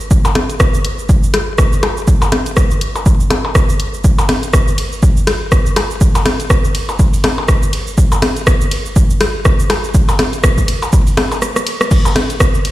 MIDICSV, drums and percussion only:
0, 0, Header, 1, 3, 480
1, 0, Start_track
1, 0, Tempo, 491803
1, 106, Time_signature, 4, 2, 24, 8
1, 12408, End_track
2, 0, Start_track
2, 0, Title_t, "Percussion blips"
2, 242, Note_on_c, 9, 77, 84
2, 340, Note_off_c, 9, 77, 0
2, 345, Note_on_c, 9, 64, 97
2, 442, Note_off_c, 9, 64, 0
2, 1785, Note_on_c, 9, 77, 76
2, 1883, Note_off_c, 9, 77, 0
2, 2164, Note_on_c, 9, 77, 78
2, 2261, Note_off_c, 9, 77, 0
2, 2265, Note_on_c, 9, 64, 89
2, 2363, Note_off_c, 9, 64, 0
2, 2885, Note_on_c, 9, 77, 53
2, 2982, Note_off_c, 9, 77, 0
2, 3225, Note_on_c, 9, 64, 85
2, 3225, Note_on_c, 9, 77, 61
2, 3323, Note_off_c, 9, 64, 0
2, 3323, Note_off_c, 9, 77, 0
2, 3364, Note_on_c, 9, 77, 56
2, 3462, Note_off_c, 9, 77, 0
2, 4085, Note_on_c, 9, 77, 76
2, 4182, Note_off_c, 9, 77, 0
2, 4185, Note_on_c, 9, 64, 89
2, 4283, Note_off_c, 9, 64, 0
2, 5626, Note_on_c, 9, 77, 71
2, 5724, Note_off_c, 9, 77, 0
2, 6004, Note_on_c, 9, 77, 74
2, 6102, Note_off_c, 9, 77, 0
2, 6105, Note_on_c, 9, 64, 92
2, 6203, Note_off_c, 9, 64, 0
2, 6723, Note_on_c, 9, 77, 50
2, 6821, Note_off_c, 9, 77, 0
2, 7066, Note_on_c, 9, 64, 88
2, 7066, Note_on_c, 9, 77, 59
2, 7164, Note_off_c, 9, 64, 0
2, 7164, Note_off_c, 9, 77, 0
2, 7205, Note_on_c, 9, 77, 52
2, 7302, Note_off_c, 9, 77, 0
2, 7923, Note_on_c, 9, 77, 74
2, 8021, Note_off_c, 9, 77, 0
2, 8025, Note_on_c, 9, 64, 94
2, 8123, Note_off_c, 9, 64, 0
2, 9466, Note_on_c, 9, 77, 70
2, 9563, Note_off_c, 9, 77, 0
2, 9845, Note_on_c, 9, 77, 76
2, 9942, Note_off_c, 9, 77, 0
2, 9946, Note_on_c, 9, 64, 98
2, 10043, Note_off_c, 9, 64, 0
2, 10565, Note_on_c, 9, 77, 53
2, 10662, Note_off_c, 9, 77, 0
2, 10906, Note_on_c, 9, 64, 90
2, 10906, Note_on_c, 9, 77, 58
2, 11003, Note_off_c, 9, 64, 0
2, 11003, Note_off_c, 9, 77, 0
2, 11044, Note_on_c, 9, 77, 52
2, 11142, Note_off_c, 9, 77, 0
2, 11764, Note_on_c, 9, 77, 74
2, 11861, Note_off_c, 9, 77, 0
2, 11865, Note_on_c, 9, 64, 101
2, 11963, Note_off_c, 9, 64, 0
2, 12408, End_track
3, 0, Start_track
3, 0, Title_t, "Drums"
3, 3, Note_on_c, 9, 69, 29
3, 101, Note_off_c, 9, 69, 0
3, 105, Note_on_c, 9, 36, 123
3, 105, Note_on_c, 9, 69, 63
3, 202, Note_off_c, 9, 69, 0
3, 203, Note_off_c, 9, 36, 0
3, 243, Note_on_c, 9, 69, 43
3, 341, Note_off_c, 9, 69, 0
3, 344, Note_on_c, 9, 42, 103
3, 345, Note_on_c, 9, 37, 67
3, 442, Note_off_c, 9, 37, 0
3, 442, Note_off_c, 9, 42, 0
3, 484, Note_on_c, 9, 42, 39
3, 484, Note_on_c, 9, 69, 29
3, 581, Note_off_c, 9, 42, 0
3, 581, Note_off_c, 9, 69, 0
3, 585, Note_on_c, 9, 36, 127
3, 585, Note_on_c, 9, 37, 97
3, 585, Note_on_c, 9, 69, 61
3, 683, Note_off_c, 9, 36, 0
3, 683, Note_off_c, 9, 37, 0
3, 683, Note_off_c, 9, 69, 0
3, 723, Note_on_c, 9, 69, 42
3, 821, Note_off_c, 9, 69, 0
3, 825, Note_on_c, 9, 42, 99
3, 923, Note_off_c, 9, 42, 0
3, 964, Note_on_c, 9, 69, 28
3, 1062, Note_off_c, 9, 69, 0
3, 1065, Note_on_c, 9, 36, 127
3, 1065, Note_on_c, 9, 69, 62
3, 1163, Note_off_c, 9, 36, 0
3, 1163, Note_off_c, 9, 69, 0
3, 1204, Note_on_c, 9, 69, 41
3, 1301, Note_off_c, 9, 69, 0
3, 1305, Note_on_c, 9, 37, 69
3, 1305, Note_on_c, 9, 42, 100
3, 1403, Note_off_c, 9, 37, 0
3, 1403, Note_off_c, 9, 42, 0
3, 1545, Note_on_c, 9, 37, 94
3, 1545, Note_on_c, 9, 69, 59
3, 1546, Note_on_c, 9, 36, 127
3, 1643, Note_off_c, 9, 36, 0
3, 1643, Note_off_c, 9, 37, 0
3, 1643, Note_off_c, 9, 69, 0
3, 1684, Note_on_c, 9, 69, 43
3, 1781, Note_off_c, 9, 69, 0
3, 1785, Note_on_c, 9, 37, 67
3, 1785, Note_on_c, 9, 42, 100
3, 1883, Note_off_c, 9, 37, 0
3, 1883, Note_off_c, 9, 42, 0
3, 1924, Note_on_c, 9, 69, 29
3, 2022, Note_off_c, 9, 69, 0
3, 2025, Note_on_c, 9, 69, 62
3, 2026, Note_on_c, 9, 36, 123
3, 2123, Note_off_c, 9, 36, 0
3, 2123, Note_off_c, 9, 69, 0
3, 2163, Note_on_c, 9, 69, 40
3, 2261, Note_off_c, 9, 69, 0
3, 2265, Note_on_c, 9, 37, 65
3, 2265, Note_on_c, 9, 42, 100
3, 2363, Note_off_c, 9, 37, 0
3, 2363, Note_off_c, 9, 42, 0
3, 2403, Note_on_c, 9, 42, 39
3, 2403, Note_on_c, 9, 69, 30
3, 2501, Note_off_c, 9, 42, 0
3, 2501, Note_off_c, 9, 69, 0
3, 2505, Note_on_c, 9, 37, 94
3, 2505, Note_on_c, 9, 69, 64
3, 2506, Note_on_c, 9, 36, 127
3, 2602, Note_off_c, 9, 37, 0
3, 2602, Note_off_c, 9, 69, 0
3, 2604, Note_off_c, 9, 36, 0
3, 2644, Note_on_c, 9, 69, 39
3, 2741, Note_off_c, 9, 69, 0
3, 2745, Note_on_c, 9, 42, 101
3, 2843, Note_off_c, 9, 42, 0
3, 2884, Note_on_c, 9, 69, 28
3, 2982, Note_off_c, 9, 69, 0
3, 2986, Note_on_c, 9, 36, 127
3, 2986, Note_on_c, 9, 69, 60
3, 3083, Note_off_c, 9, 69, 0
3, 3084, Note_off_c, 9, 36, 0
3, 3125, Note_on_c, 9, 69, 40
3, 3222, Note_off_c, 9, 69, 0
3, 3225, Note_on_c, 9, 37, 67
3, 3226, Note_on_c, 9, 42, 100
3, 3323, Note_off_c, 9, 37, 0
3, 3324, Note_off_c, 9, 42, 0
3, 3466, Note_on_c, 9, 36, 127
3, 3466, Note_on_c, 9, 37, 89
3, 3466, Note_on_c, 9, 69, 58
3, 3563, Note_off_c, 9, 37, 0
3, 3563, Note_off_c, 9, 69, 0
3, 3564, Note_off_c, 9, 36, 0
3, 3604, Note_on_c, 9, 69, 42
3, 3702, Note_off_c, 9, 69, 0
3, 3705, Note_on_c, 9, 42, 95
3, 3803, Note_off_c, 9, 42, 0
3, 3844, Note_on_c, 9, 69, 27
3, 3941, Note_off_c, 9, 69, 0
3, 3945, Note_on_c, 9, 69, 61
3, 3946, Note_on_c, 9, 36, 118
3, 4043, Note_off_c, 9, 69, 0
3, 4044, Note_off_c, 9, 36, 0
3, 4084, Note_on_c, 9, 69, 41
3, 4181, Note_off_c, 9, 69, 0
3, 4185, Note_on_c, 9, 37, 62
3, 4185, Note_on_c, 9, 42, 93
3, 4185, Note_on_c, 9, 51, 87
3, 4283, Note_off_c, 9, 37, 0
3, 4283, Note_off_c, 9, 42, 0
3, 4283, Note_off_c, 9, 51, 0
3, 4324, Note_on_c, 9, 42, 37
3, 4324, Note_on_c, 9, 69, 29
3, 4422, Note_off_c, 9, 42, 0
3, 4422, Note_off_c, 9, 69, 0
3, 4426, Note_on_c, 9, 36, 118
3, 4426, Note_on_c, 9, 37, 92
3, 4426, Note_on_c, 9, 69, 64
3, 4523, Note_off_c, 9, 37, 0
3, 4523, Note_off_c, 9, 69, 0
3, 4524, Note_off_c, 9, 36, 0
3, 4564, Note_on_c, 9, 69, 40
3, 4662, Note_off_c, 9, 69, 0
3, 4665, Note_on_c, 9, 42, 98
3, 4665, Note_on_c, 9, 51, 90
3, 4763, Note_off_c, 9, 42, 0
3, 4763, Note_off_c, 9, 51, 0
3, 4805, Note_on_c, 9, 69, 27
3, 4902, Note_off_c, 9, 69, 0
3, 4905, Note_on_c, 9, 69, 58
3, 4906, Note_on_c, 9, 36, 127
3, 5003, Note_off_c, 9, 36, 0
3, 5003, Note_off_c, 9, 69, 0
3, 5044, Note_on_c, 9, 69, 41
3, 5142, Note_off_c, 9, 69, 0
3, 5145, Note_on_c, 9, 37, 69
3, 5146, Note_on_c, 9, 42, 92
3, 5146, Note_on_c, 9, 51, 89
3, 5243, Note_off_c, 9, 37, 0
3, 5243, Note_off_c, 9, 42, 0
3, 5243, Note_off_c, 9, 51, 0
3, 5386, Note_on_c, 9, 36, 118
3, 5386, Note_on_c, 9, 37, 83
3, 5386, Note_on_c, 9, 69, 59
3, 5483, Note_off_c, 9, 36, 0
3, 5483, Note_off_c, 9, 37, 0
3, 5483, Note_off_c, 9, 69, 0
3, 5524, Note_on_c, 9, 69, 41
3, 5622, Note_off_c, 9, 69, 0
3, 5625, Note_on_c, 9, 42, 96
3, 5625, Note_on_c, 9, 51, 82
3, 5626, Note_on_c, 9, 37, 64
3, 5723, Note_off_c, 9, 42, 0
3, 5723, Note_off_c, 9, 51, 0
3, 5724, Note_off_c, 9, 37, 0
3, 5764, Note_on_c, 9, 69, 28
3, 5861, Note_off_c, 9, 69, 0
3, 5865, Note_on_c, 9, 69, 61
3, 5866, Note_on_c, 9, 36, 115
3, 5962, Note_off_c, 9, 69, 0
3, 5963, Note_off_c, 9, 36, 0
3, 6004, Note_on_c, 9, 51, 50
3, 6004, Note_on_c, 9, 69, 44
3, 6101, Note_off_c, 9, 51, 0
3, 6101, Note_off_c, 9, 69, 0
3, 6105, Note_on_c, 9, 37, 69
3, 6105, Note_on_c, 9, 42, 96
3, 6105, Note_on_c, 9, 51, 90
3, 6203, Note_off_c, 9, 37, 0
3, 6203, Note_off_c, 9, 42, 0
3, 6203, Note_off_c, 9, 51, 0
3, 6244, Note_on_c, 9, 42, 36
3, 6244, Note_on_c, 9, 69, 31
3, 6342, Note_off_c, 9, 42, 0
3, 6342, Note_off_c, 9, 69, 0
3, 6345, Note_on_c, 9, 36, 117
3, 6345, Note_on_c, 9, 37, 90
3, 6345, Note_on_c, 9, 69, 65
3, 6443, Note_off_c, 9, 36, 0
3, 6443, Note_off_c, 9, 37, 0
3, 6443, Note_off_c, 9, 69, 0
3, 6484, Note_on_c, 9, 69, 42
3, 6582, Note_off_c, 9, 69, 0
3, 6585, Note_on_c, 9, 42, 92
3, 6585, Note_on_c, 9, 51, 92
3, 6683, Note_off_c, 9, 42, 0
3, 6683, Note_off_c, 9, 51, 0
3, 6724, Note_on_c, 9, 69, 29
3, 6822, Note_off_c, 9, 69, 0
3, 6825, Note_on_c, 9, 36, 117
3, 6825, Note_on_c, 9, 69, 61
3, 6922, Note_off_c, 9, 69, 0
3, 6923, Note_off_c, 9, 36, 0
3, 6963, Note_on_c, 9, 51, 54
3, 6963, Note_on_c, 9, 69, 43
3, 7061, Note_off_c, 9, 51, 0
3, 7061, Note_off_c, 9, 69, 0
3, 7065, Note_on_c, 9, 42, 92
3, 7065, Note_on_c, 9, 51, 88
3, 7066, Note_on_c, 9, 37, 69
3, 7162, Note_off_c, 9, 42, 0
3, 7162, Note_off_c, 9, 51, 0
3, 7164, Note_off_c, 9, 37, 0
3, 7305, Note_on_c, 9, 36, 115
3, 7305, Note_on_c, 9, 37, 86
3, 7305, Note_on_c, 9, 69, 59
3, 7402, Note_off_c, 9, 37, 0
3, 7402, Note_off_c, 9, 69, 0
3, 7403, Note_off_c, 9, 36, 0
3, 7444, Note_on_c, 9, 69, 44
3, 7541, Note_off_c, 9, 69, 0
3, 7545, Note_on_c, 9, 42, 92
3, 7545, Note_on_c, 9, 51, 91
3, 7643, Note_off_c, 9, 42, 0
3, 7643, Note_off_c, 9, 51, 0
3, 7684, Note_on_c, 9, 69, 29
3, 7781, Note_off_c, 9, 69, 0
3, 7785, Note_on_c, 9, 36, 110
3, 7785, Note_on_c, 9, 69, 67
3, 7883, Note_off_c, 9, 36, 0
3, 7883, Note_off_c, 9, 69, 0
3, 7923, Note_on_c, 9, 69, 45
3, 8021, Note_off_c, 9, 69, 0
3, 8025, Note_on_c, 9, 37, 72
3, 8025, Note_on_c, 9, 42, 88
3, 8025, Note_on_c, 9, 51, 96
3, 8122, Note_off_c, 9, 42, 0
3, 8122, Note_off_c, 9, 51, 0
3, 8123, Note_off_c, 9, 37, 0
3, 8164, Note_on_c, 9, 42, 37
3, 8164, Note_on_c, 9, 69, 31
3, 8262, Note_off_c, 9, 42, 0
3, 8262, Note_off_c, 9, 69, 0
3, 8265, Note_on_c, 9, 36, 116
3, 8265, Note_on_c, 9, 37, 96
3, 8265, Note_on_c, 9, 69, 65
3, 8363, Note_off_c, 9, 36, 0
3, 8363, Note_off_c, 9, 37, 0
3, 8363, Note_off_c, 9, 69, 0
3, 8404, Note_on_c, 9, 69, 44
3, 8502, Note_off_c, 9, 69, 0
3, 8505, Note_on_c, 9, 42, 96
3, 8505, Note_on_c, 9, 51, 94
3, 8603, Note_off_c, 9, 42, 0
3, 8603, Note_off_c, 9, 51, 0
3, 8644, Note_on_c, 9, 69, 30
3, 8742, Note_off_c, 9, 69, 0
3, 8746, Note_on_c, 9, 36, 119
3, 8746, Note_on_c, 9, 69, 67
3, 8843, Note_off_c, 9, 36, 0
3, 8843, Note_off_c, 9, 69, 0
3, 8884, Note_on_c, 9, 69, 44
3, 8982, Note_off_c, 9, 69, 0
3, 8985, Note_on_c, 9, 42, 85
3, 8985, Note_on_c, 9, 51, 86
3, 8986, Note_on_c, 9, 37, 74
3, 9082, Note_off_c, 9, 42, 0
3, 9082, Note_off_c, 9, 51, 0
3, 9083, Note_off_c, 9, 37, 0
3, 9225, Note_on_c, 9, 37, 84
3, 9225, Note_on_c, 9, 69, 60
3, 9226, Note_on_c, 9, 36, 118
3, 9323, Note_off_c, 9, 36, 0
3, 9323, Note_off_c, 9, 37, 0
3, 9323, Note_off_c, 9, 69, 0
3, 9364, Note_on_c, 9, 69, 45
3, 9461, Note_off_c, 9, 69, 0
3, 9465, Note_on_c, 9, 42, 88
3, 9465, Note_on_c, 9, 51, 91
3, 9466, Note_on_c, 9, 37, 72
3, 9563, Note_off_c, 9, 37, 0
3, 9563, Note_off_c, 9, 42, 0
3, 9563, Note_off_c, 9, 51, 0
3, 9604, Note_on_c, 9, 69, 30
3, 9702, Note_off_c, 9, 69, 0
3, 9705, Note_on_c, 9, 69, 64
3, 9706, Note_on_c, 9, 36, 114
3, 9802, Note_off_c, 9, 69, 0
3, 9803, Note_off_c, 9, 36, 0
3, 9844, Note_on_c, 9, 51, 53
3, 9844, Note_on_c, 9, 69, 44
3, 9942, Note_off_c, 9, 51, 0
3, 9942, Note_off_c, 9, 69, 0
3, 9945, Note_on_c, 9, 42, 93
3, 9945, Note_on_c, 9, 51, 90
3, 9946, Note_on_c, 9, 37, 72
3, 10043, Note_off_c, 9, 37, 0
3, 10043, Note_off_c, 9, 42, 0
3, 10043, Note_off_c, 9, 51, 0
3, 10084, Note_on_c, 9, 42, 36
3, 10084, Note_on_c, 9, 69, 30
3, 10181, Note_off_c, 9, 42, 0
3, 10181, Note_off_c, 9, 69, 0
3, 10185, Note_on_c, 9, 37, 96
3, 10185, Note_on_c, 9, 69, 71
3, 10186, Note_on_c, 9, 36, 117
3, 10283, Note_off_c, 9, 36, 0
3, 10283, Note_off_c, 9, 37, 0
3, 10283, Note_off_c, 9, 69, 0
3, 10324, Note_on_c, 9, 36, 60
3, 10324, Note_on_c, 9, 69, 44
3, 10421, Note_off_c, 9, 69, 0
3, 10422, Note_off_c, 9, 36, 0
3, 10425, Note_on_c, 9, 42, 93
3, 10425, Note_on_c, 9, 51, 89
3, 10523, Note_off_c, 9, 42, 0
3, 10523, Note_off_c, 9, 51, 0
3, 10563, Note_on_c, 9, 69, 31
3, 10661, Note_off_c, 9, 69, 0
3, 10665, Note_on_c, 9, 69, 67
3, 10666, Note_on_c, 9, 36, 120
3, 10762, Note_off_c, 9, 69, 0
3, 10763, Note_off_c, 9, 36, 0
3, 10804, Note_on_c, 9, 51, 50
3, 10804, Note_on_c, 9, 69, 44
3, 10901, Note_off_c, 9, 51, 0
3, 10901, Note_off_c, 9, 69, 0
3, 10905, Note_on_c, 9, 42, 90
3, 10905, Note_on_c, 9, 51, 93
3, 10906, Note_on_c, 9, 37, 77
3, 11003, Note_off_c, 9, 37, 0
3, 11003, Note_off_c, 9, 42, 0
3, 11003, Note_off_c, 9, 51, 0
3, 11044, Note_on_c, 9, 69, 32
3, 11142, Note_off_c, 9, 69, 0
3, 11146, Note_on_c, 9, 37, 61
3, 11146, Note_on_c, 9, 42, 34
3, 11146, Note_on_c, 9, 69, 66
3, 11244, Note_off_c, 9, 37, 0
3, 11244, Note_off_c, 9, 42, 0
3, 11244, Note_off_c, 9, 69, 0
3, 11285, Note_on_c, 9, 37, 65
3, 11285, Note_on_c, 9, 69, 47
3, 11382, Note_off_c, 9, 37, 0
3, 11382, Note_off_c, 9, 69, 0
3, 11386, Note_on_c, 9, 42, 93
3, 11386, Note_on_c, 9, 51, 88
3, 11483, Note_off_c, 9, 42, 0
3, 11483, Note_off_c, 9, 51, 0
3, 11525, Note_on_c, 9, 37, 85
3, 11525, Note_on_c, 9, 69, 30
3, 11622, Note_off_c, 9, 37, 0
3, 11622, Note_off_c, 9, 69, 0
3, 11626, Note_on_c, 9, 36, 116
3, 11626, Note_on_c, 9, 49, 76
3, 11626, Note_on_c, 9, 69, 64
3, 11723, Note_off_c, 9, 36, 0
3, 11724, Note_off_c, 9, 49, 0
3, 11724, Note_off_c, 9, 69, 0
3, 11765, Note_on_c, 9, 69, 45
3, 11862, Note_off_c, 9, 69, 0
3, 11865, Note_on_c, 9, 37, 71
3, 11866, Note_on_c, 9, 42, 99
3, 11866, Note_on_c, 9, 51, 89
3, 11963, Note_off_c, 9, 37, 0
3, 11964, Note_off_c, 9, 42, 0
3, 11964, Note_off_c, 9, 51, 0
3, 12005, Note_on_c, 9, 42, 38
3, 12005, Note_on_c, 9, 69, 31
3, 12102, Note_off_c, 9, 42, 0
3, 12102, Note_off_c, 9, 69, 0
3, 12105, Note_on_c, 9, 37, 97
3, 12105, Note_on_c, 9, 69, 65
3, 12106, Note_on_c, 9, 36, 121
3, 12203, Note_off_c, 9, 36, 0
3, 12203, Note_off_c, 9, 37, 0
3, 12203, Note_off_c, 9, 69, 0
3, 12244, Note_on_c, 9, 69, 43
3, 12342, Note_off_c, 9, 69, 0
3, 12345, Note_on_c, 9, 42, 96
3, 12345, Note_on_c, 9, 51, 88
3, 12408, Note_off_c, 9, 42, 0
3, 12408, Note_off_c, 9, 51, 0
3, 12408, End_track
0, 0, End_of_file